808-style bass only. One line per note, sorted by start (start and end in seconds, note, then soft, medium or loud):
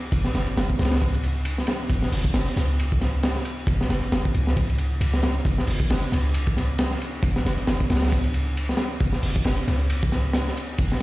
0.12 0.27 F#1 loud
0.34 0.47 F#1 medium
0.47 0.55 F#1 soft
0.57 0.72 F#1 medium
0.79 1.62 C#2 medium
1.90 2.05 F#1 loud
2.12 2.27 F#1 medium
2.34 2.49 F#1 medium
2.56 3.40 C#2 medium
3.67 3.82 F#1 loud
3.89 4.02 F#1 medium
4.02 4.10 F#1 soft
4.12 4.27 F#1 medium
4.34 5.00 C#2 medium
5.01 5.40 C#2 medium
5.45 5.60 F#1 medium
5.68 5.83 F#1 medium
5.90 6.05 F#1 medium
6.12 6.95 C#2 medium
7.23 7.38 F#1 medium
7.45 7.57 F#1 medium
7.58 7.66 F#1 soft
7.67 7.83 F#1 medium
7.90 8.73 C#2 medium
9.01 9.16 F#1 medium
9.23 9.38 F#1 medium
9.45 9.61 F#1 medium
9.68 10.51 C#2 medium
10.79 10.94 F#1 loud